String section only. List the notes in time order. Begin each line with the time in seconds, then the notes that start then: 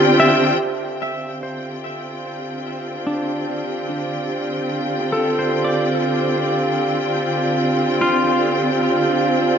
Already playing: D3 C4 F4 G4 G5
0.61 D3
0.72 C4
1.51 F4